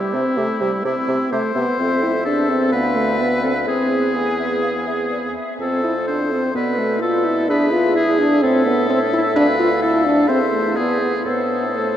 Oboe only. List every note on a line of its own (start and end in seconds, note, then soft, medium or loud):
0.00 0.83 E4 medium
0.85 1.31 E4 medium
1.32 2.24 C5 medium
2.25 2.71 A4 medium
2.73 3.66 B4 medium
3.68 5.32 G#4 medium
5.60 6.04 A4 soft
6.08 6.54 C5 medium
6.56 7.01 B4 medium
7.02 7.48 A4 medium
7.50 7.95 B4 medium
7.96 8.42 G#4 medium
8.43 9.34 A4 medium
9.36 9.81 B4 medium
9.82 10.30 A4 medium
10.28 10.78 C5 medium
10.76 11.24 G#4 medium
11.25 11.97 A4 medium